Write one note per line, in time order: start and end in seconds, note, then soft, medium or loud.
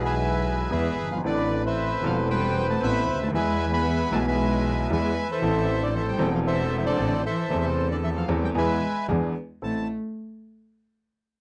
0.00 0.67 B1 medium
0.00 0.67 B2 medium
0.00 0.66 E3 medium
0.00 0.66 G#3 medium
0.00 0.67 B3 medium
0.00 0.15 G#4 medium
0.00 0.68 G#4 medium
0.05 0.70 B4 medium
0.05 0.71 E5 medium
0.05 0.74 G#5 medium
0.70 0.93 E2 medium
0.70 0.94 E2 medium
0.70 0.93 E3 medium
0.70 1.08 E3 medium
0.70 0.93 G#3 medium
0.70 0.93 B3 medium
0.70 0.93 G#4 medium
0.70 1.21 G#4 medium
0.70 1.21 B4 medium
0.70 1.09 E5 medium
0.97 1.24 G1 medium
1.04 1.11 F#1 soft
1.11 1.18 G1 medium
1.11 1.17 F3 medium
1.11 1.18 F5 medium
1.17 1.24 G#1 medium
1.22 2.00 A1 medium
1.22 2.00 A2 medium
1.22 1.62 D3 medium
1.22 1.99 E3 medium
1.22 1.99 A3 medium
1.22 2.00 C4 medium
1.22 2.01 A4 medium
1.22 1.65 B4 medium
1.22 1.62 D5 medium
1.65 2.01 E3 medium
1.65 2.29 B4 medium
1.65 2.28 C5 medium
1.65 2.06 E5 medium
2.01 2.78 E1 medium
2.01 2.78 E2 medium
2.01 2.77 E3 medium
2.01 2.16 F3 medium
2.01 2.78 A3 medium
2.01 2.78 C4 medium
2.06 2.79 A4 medium
2.06 2.17 F5 medium
2.30 2.66 G3 medium
2.30 3.30 B4 medium
2.30 3.30 C5 medium
2.30 2.67 G5 loud
2.69 2.81 A3 medium
2.69 2.82 A5 medium
2.82 3.04 A1 medium
2.82 3.04 A2 medium
2.82 3.04 E3 medium
2.82 3.04 B3 medium
2.82 3.19 B3 medium
2.82 3.04 C4 medium
2.82 3.04 A4 medium
2.82 3.31 E5 medium
2.82 3.19 B5 loud
3.08 3.33 D2 medium
3.15 3.21 C#2 medium
3.22 3.28 D2 medium
3.22 3.27 A3 medium
3.22 3.28 A5 medium
3.28 3.34 D#2 medium
3.32 4.08 E2 loud
3.32 4.09 E2 medium
3.32 4.09 E3 medium
3.32 4.08 G#3 medium
3.32 3.71 G#3 medium
3.32 4.09 B3 medium
3.32 4.26 B4 medium
3.32 3.72 E5 medium
3.32 3.71 G#5 loud
3.36 4.10 G#4 medium
3.73 4.10 B3 medium
3.73 4.26 E5 medium
3.73 4.26 G#5 medium
3.73 4.10 B5 loud
4.10 4.86 B1 medium
4.10 4.87 B1 medium
4.10 4.87 B2 loud
4.10 4.85 E3 medium
4.10 4.86 G#3 medium
4.10 4.19 A3 medium
4.10 4.87 B3 medium
4.10 4.87 G#4 medium
4.10 4.19 A5 loud
4.27 4.87 G#3 medium
4.27 4.91 B4 medium
4.27 4.91 E5 medium
4.27 4.87 G#5 medium
4.90 5.12 E2 loud
4.90 5.12 E2 medium
4.90 5.12 E3 medium
4.90 5.12 G#3 medium
4.90 5.26 G#3 medium
4.90 5.12 B3 medium
4.90 5.12 G#4 medium
4.90 5.39 B4 medium
4.90 5.31 E5 medium
4.90 5.27 G#5 loud
5.31 5.78 E3 medium
5.31 6.29 A4 medium
5.31 6.29 C5 medium
5.31 5.83 E5 loud
5.40 6.15 A1 medium
5.40 6.15 A1 loud
5.40 6.15 A2 medium
5.40 6.14 E3 medium
5.40 6.15 A3 medium
5.40 6.16 C4 medium
5.40 6.16 A4 medium
5.82 5.93 D3 medium
5.82 5.94 D5 medium
5.95 6.00 E3 medium
5.95 6.02 E5 loud
6.08 6.31 G3 medium
6.08 6.34 G5 medium
6.17 6.94 E1 loud
6.17 6.94 E2 loud
6.17 6.93 E3 medium
6.17 6.93 A3 medium
6.17 6.94 C4 medium
6.17 6.95 A4 medium
6.33 6.39 F3 medium
6.33 6.40 F5 medium
6.47 6.77 E3 medium
6.47 6.84 A4 medium
6.47 7.25 C5 medium
6.47 6.77 E5 loud
6.78 6.85 E3 medium
6.78 6.85 E5 medium
6.86 7.22 D3 medium
6.86 7.24 A4 medium
6.86 7.22 D5 loud
6.98 7.20 A1 medium
6.98 7.20 A2 medium
6.98 7.20 E3 medium
6.98 7.20 A3 medium
6.98 7.20 C4 medium
6.98 7.20 A4 medium
7.25 7.61 E3 medium
7.25 8.25 A4 medium
7.25 7.63 C5 medium
7.25 7.65 E5 medium
7.50 8.24 E2 medium
7.50 8.24 E3 medium
7.50 8.24 A3 medium
7.50 8.25 C4 medium
7.50 8.26 A4 medium
7.64 7.88 C3 medium
7.64 7.88 C5 medium
7.91 7.96 D3 medium
7.91 7.97 D5 medium
8.04 8.09 E3 medium
8.04 8.09 E5 medium
8.16 8.28 F3 medium
8.16 8.29 F5 medium
8.28 8.50 E2 loud
8.28 8.51 E2 loud
8.28 8.51 E3 loud
8.28 8.51 A3 medium
8.28 8.51 C4 medium
8.28 8.51 A4 medium
8.42 8.48 G3 medium
8.42 8.50 G5 medium
8.54 8.77 E2 loud
8.54 8.78 E2 medium
8.54 8.78 E3 medium
8.54 8.77 G#3 medium
8.54 9.05 G#3 medium
8.54 8.77 B3 medium
8.54 8.78 G#4 medium
8.54 9.07 B4 medium
8.54 9.07 E5 medium
8.54 9.07 G#5 medium
9.08 9.31 E2 medium
9.08 9.32 E2 medium
9.08 9.31 E3 medium
9.08 9.31 B3 medium
9.08 9.31 D4 medium
9.08 9.32 G#4 medium
9.62 9.84 A1 soft
9.62 9.85 A1 medium
9.62 9.87 A3 medium
9.62 9.84 C4 soft
9.62 9.84 E4 soft
9.62 9.84 A4 medium
9.62 9.88 A5 medium